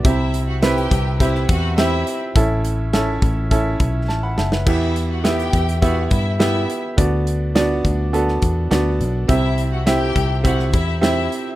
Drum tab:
CC |----------------|----------------|x---------------|----------------|
HH |x-x-xxx-x-x-x-x-|x-x-x-x-x-x-----|--x-xxxxx-x-x-x-|x-x-x-x-x-x-x-x-|
SD |----o----o--o---|----o-------o-oo|----o-------o---|----o----o--o---|
BD |o-----o-o-o-----|o-----o-o-o-----|o-----o-o-o-----|o-----o---o-----|

CC |----------------|
HH |x-x-x-x-x-x-x-x-|
SD |----o----o--o---|
BD |o-----o-o-o-----|